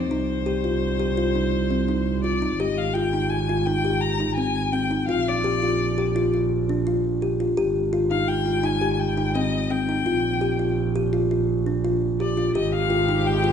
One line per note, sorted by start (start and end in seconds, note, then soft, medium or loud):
0.00 0.11 F2 medium
0.00 2.23 C5 medium
0.09 2.55 C2 medium
0.09 0.36 D#4 medium
0.46 0.59 G4 medium
0.64 0.90 F4 medium
1.00 1.12 G4 medium
1.17 1.30 F4 medium
1.35 1.61 D#4 medium
1.71 1.83 C4 medium
1.88 2.14 D#4 medium
2.24 2.37 F4 medium
2.24 2.61 D5 medium
2.42 2.55 D#4 medium
2.59 5.10 G#1 medium
2.59 2.85 G4 medium
2.59 2.79 D#5 medium
2.78 2.96 F5 medium
2.94 3.08 F4 medium
2.94 3.31 G5 medium
3.13 3.39 D#4 medium
3.30 3.67 G#5 medium
3.49 3.62 F4 medium
3.65 3.79 D#4 medium
3.65 4.02 G5 medium
3.85 4.10 G4 medium
4.01 4.35 A#5 medium
4.20 4.33 D#4 medium
4.35 4.63 C4 medium
4.35 4.74 G#5 medium
4.72 4.86 C4 medium
4.72 5.08 G5 medium
4.91 5.04 D#4 medium
5.08 7.59 A#1 medium
5.08 5.34 F4 medium
5.08 5.30 F5 medium
5.28 6.34 D5 medium
5.44 5.57 G4 medium
5.62 5.88 F4 medium
5.98 6.11 G4 medium
6.16 6.28 F4 medium
6.34 6.59 F4 medium
6.69 6.82 D4 medium
6.87 7.12 F4 medium
7.22 7.35 G4 medium
7.40 7.53 F4 medium
7.57 10.07 G#1 medium
7.57 7.83 G4 medium
7.93 8.06 F4 medium
8.11 8.37 D#4 medium
8.11 8.30 F5 medium
8.28 8.66 G5 medium
8.46 8.59 F4 medium
8.63 8.77 D#4 medium
8.63 8.92 G#5 medium
8.81 9.07 G4 medium
8.93 9.01 G#5 medium
8.99 9.36 G5 medium
9.18 9.30 D#4 medium
9.35 9.61 C4 medium
9.35 9.73 D#5 medium
9.70 9.83 C4 medium
9.70 10.78 G5 medium
9.89 10.02 D#4 medium
10.05 12.56 A#1 medium
10.05 10.32 F4 medium
10.41 10.54 G4 medium
10.59 10.85 F4 medium
10.96 11.08 G4 medium
11.13 11.26 F4 medium
11.31 11.57 F4 medium
11.66 11.79 D4 medium
11.85 12.10 F4 medium
12.20 12.33 G4 medium
12.20 12.54 D5 medium
12.37 12.50 F4 medium
12.55 13.52 G#1 medium
12.55 13.52 C3 medium
12.55 13.52 G#3 medium
12.55 12.81 G4 medium
12.55 13.52 G4 medium
12.55 12.72 D#5 medium
12.75 13.28 F5 medium
12.90 13.03 F4 medium
13.09 13.34 D#4 medium
13.27 13.52 G5 medium
13.44 13.52 F4 medium